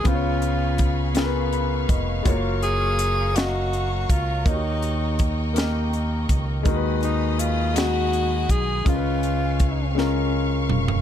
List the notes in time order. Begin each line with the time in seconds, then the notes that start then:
Already playing: G#5
0.03 C#2 C#3 B3 F4 G#4 F5 B5 C#6, kick, closed hi-hat
0.08 F4 C5
0.15 C#5
0.42 closed hi-hat
0.78 kick, closed hi-hat
1.14 B3 F4 G#4, snare, closed hi-hat
1.18 A#4
1.24 B4
1.53 B5, closed hi-hat
1.89 F1 D#5, kick, closed hi-hat
2.23 F#1 G#3 F4 F#4 C#5 A#5, kick, closed hi-hat
2.29 A#3
2.62 G#4, closed hi-hat
2.99 closed hi-hat
3.33 A#3 F#4 D#5 F5, closed hi-hat
3.38 snare
3.73 closed hi-hat
4.10 C#2 F4, kick, closed hi-hat
4.45 D#2 D#3 A#3 D#4 F#4 D#5 G5, kick, closed hi-hat
4.49 C#5
4.54 G4
4.82 closed hi-hat
5.19 kick, closed hi-hat
5.53 A#3 D#4 G4 A#4, closed hi-hat
5.58 snare
5.93 closed hi-hat
6.29 C#2, kick, closed hi-hat
6.63 D#2 D#3 G#3 D#4 F#4 A#4 D#5 G#5 B5 D#6, kick, closed hi-hat
6.74 B4
7.03 D#4, closed hi-hat
7.39 F4, closed hi-hat
7.74 G#3 D#4 F#4, closed hi-hat
7.78 G#4, snare
8.13 closed hi-hat
8.49 B1 G#4, kick, closed hi-hat
8.85 C#2 C#3 G#3 C#4 F4 A#4 F5 C#6, kick, closed hi-hat
8.89 F4
8.95 B4
9.23 closed hi-hat
9.60 kick, closed hi-hat
9.95 G#3 C#4 F4, snare
9.99 A#4
10.70 F1, mid tom
10.88 floor tom